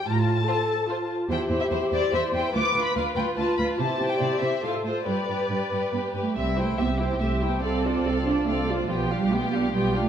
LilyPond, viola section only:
\new Staff \with { instrumentName = "Viola section" } { \time 3/4 \key f \major \tempo 4 = 143 f'4 a'4 f'4 | \key c \major g'2 c''4 | b'2 f'4 | g'2 a'4 |
b'2~ b'8 r8 | <c' g'>8 e'8 <c' g'>8 e'8 <c' g'>8 e'8 | <c' a'>8 <d' f'>8 <c' a'>8 <d' f'>8 <c' a'>8 <d' f'>8 | <b g'>8 <d' f'>8 <b g'>8 <d' f'>8 <b g'>8 <d' f'>8 | }